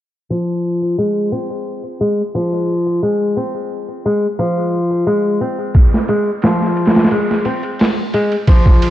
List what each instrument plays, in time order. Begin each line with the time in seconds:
0.30 nylon-string guitar F3
0.98 nylon-string guitar G#3
1.32 nylon-string guitar C4
2.01 nylon-string guitar G#3
2.35 nylon-string guitar F3
3.03 nylon-string guitar G#3
3.37 nylon-string guitar C4
4.06 nylon-string guitar G#3
4.39 nylon-string guitar F3
5.07 nylon-string guitar G#3
5.41 nylon-string guitar C4
5.74 kick, ride
5.94 snare
6.08 nylon-string guitar G#3, ride
6.42 nylon-string guitar F3, snare, ride
6.62 snare
6.77 ride
6.86 snare, ride
6.95 snare, ride
7.03 snare, ride
7.11 nylon-string guitar G#3, ride
7.31 snare
7.45 nylon-string guitar C4, ride
7.63 ride
7.79 snare, open hi-hat
8.14 nylon-string guitar G#3, ride
8.32 ride
8.47 nylon-string guitar F3, kick, ride
8.66 kick
8.82 ride